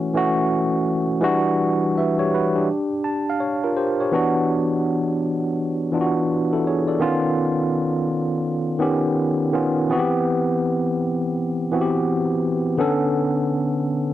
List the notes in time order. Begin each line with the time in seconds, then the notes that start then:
Already playing: E3 A3 C#4 F#4
0.14 E3 A3 C#4 F#4
1.21 E3 G3 D4 F#4
1.98 B4 E5
2.19 G4 C#5
2.34 F#4 B4
2.55 D4 G4
3.04 A5
3.30 F5
3.40 C#5
3.64 F4 A#4
3.76 G4 C5
4.00 G4 C#5
4.12 E3 B3 D4 F#4
5.92 E3 B3 D4 F4
6.01 F#4
6.53 E4 A4
6.67 G#4 C#5
6.88 A4 D5
6.99 D#3 B3 C#4 F4
8.79 D#3 B3 C#4 G4
9.52 D#3 B3 C#4 F4
9.90 E3 B3 C4 F#4
9.99 G4
11.72 E3 B3 C4 F#4
11.81 G4
12.77 D3 B3 C#4 A4